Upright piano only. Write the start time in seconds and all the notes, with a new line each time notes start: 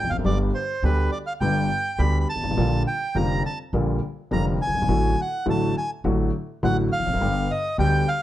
0.05 E2
0.12 F2
0.19 F#2
0.25 G1 G2 D3 G3 B3 G4
0.83 D2 D3 G3 B3 G4
1.41 G1 G2 D3 G3 B3 G4
1.98 D2 D3 G3 B3 G4
2.35 G1
2.43 G#1
2.51 A1
2.57 A#1 A#2 D3 G3 A#3 F4
3.15 F1 F2 D3 G3 A#3 F4
3.73 A#1 A#2 D3 G3 A#3 F4
4.31 F1 F2 D3 G3 A#3 F4
4.67 F#1
4.75 G1
4.82 G#1
4.89 A1 A2 D3 F#3 A3 F#4
5.46 A1 A2 D3 F#3 A3 F#4
6.04 A1 A2 D3 F#3 A3 F#4
6.63 A1 A2 D3 F#3 A3 F#4
7.00 E2
7.06 F2
7.13 F#2
7.21 G1 G2 D3 G3 B3 G4
7.78 D2 D3 G3 B3 G4